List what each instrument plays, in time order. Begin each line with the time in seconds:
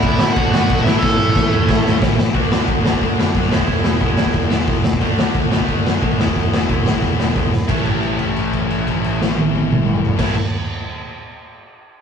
Already playing: overdriven electric guitar D3 A3 D4, lead electric guitar E4 E5, distorted electric guitar F#4
0.02 picked electric bass D2, kick, crash
0.19 picked electric bass A2, snare
0.33 overdriven electric guitar D3 A3, lead electric guitar F#5, kick, crash
0.37 picked electric bass D2, overdriven electric guitar D4, lead electric guitar F#4
0.53 picked electric bass F#2, snare
0.70 picked electric bass B1, kick, crash
0.83 picked electric bass A1, overdriven electric guitar A2 E3 A3, distorted electric guitar C#4, lead electric guitar E5, snare
0.88 lead electric guitar E4, distorted electric guitar E4
0.99 lead electric guitar A4, kick
1.03 picked electric bass A1, lead electric guitar A3, snare
1.19 picked electric bass A1
1.36 picked electric bass A1, kick, snare
1.49 picked electric bass E2, overdriven electric guitar A2 E3 A3
1.69 picked electric bass A1, kick, snare
1.86 picked electric bass D2, snare
2.02 picked electric bass A1, kick, snare
2.18 picked electric bass A1, snare
2.32 picked electric bass D2, overdriven electric guitar D3 A3 D4, kick, open hi-hat
2.37 distorted electric guitar F#4
2.52 snare
2.68 picked electric bass D2, kick, open hi-hat
2.83 picked electric bass D2, overdriven electric guitar D3 A3 D4, distorted electric guitar F#4, snare
2.93 kick
3.02 picked electric bass D2, kick, open hi-hat
3.19 picked electric bass F#2, snare
3.33 picked electric bass F#2, overdriven electric guitar D3 A3 D4, kick, open hi-hat
3.50 picked electric bass E1, overdriven electric guitar E2 B2 E3, distorted electric guitar G#3 B3 E4, snare
3.60 kick
3.67 picked electric bass E1, kick, open hi-hat
3.84 picked electric bass E1, snare
3.99 picked electric bass E1, overdriven electric guitar E2, distorted electric guitar E3 G#3 B3 E4, kick, open hi-hat
4.03 overdriven electric guitar B2 E3
4.17 picked electric bass D2, snare
4.26 kick
4.33 picked electric bass E1, kick, open hi-hat
4.50 picked electric bass E1, overdriven electric guitar E2 B2 E3, snare
4.67 picked electric bass E1, kick, open hi-hat
4.84 picked electric bass E1, snare
4.93 kick
5.00 picked electric bass D2, overdriven electric guitar D3 A3 D4, distorted electric guitar F#4, kick, open hi-hat
5.18 snare
5.35 picked electric bass D2, kick, open hi-hat
5.50 picked electric bass D2, overdriven electric guitar D3 A3 D4, distorted electric guitar F#4, snare
5.60 kick
5.68 picked electric bass D2, kick, open hi-hat
5.86 picked electric bass F#2, snare
6.00 picked electric bass D2, overdriven electric guitar D3 A3 D4, kick, open hi-hat
6.17 picked electric bass E1, overdriven electric guitar E2 B2 E3, distorted electric guitar G#3 B3 E4, snare
6.28 kick
6.36 picked electric bass E1, kick, open hi-hat
6.53 picked electric bass E1, snare
6.67 picked electric bass E1, overdriven electric guitar E2 B2 E3, distorted electric guitar G#3 B3 E4, kick, open hi-hat
6.86 picked electric bass D2, snare
6.94 kick
7.02 picked electric bass E1, kick, open hi-hat
7.18 picked electric bass E1, overdriven electric guitar E2 B2 E3, snare
7.36 picked electric bass E1, kick, open hi-hat
7.52 picked electric bass E1, snare
7.68 picked electric bass A1, overdriven electric guitar A2 E3 A3, distorted electric guitar C#4 E4, kick, crash
7.85 kick, crash
8.02 crash
8.19 kick, crash
8.36 crash
8.53 kick, crash
8.70 crash
8.87 kick, crash
9.04 crash
9.21 snare
9.37 high tom
9.55 high tom
9.72 mid tom
9.88 mid tom
10.05 floor tom
10.18 picked electric bass A1, overdriven electric guitar A2 E3 A3, distorted electric guitar C#4 E4, kick, snare, crash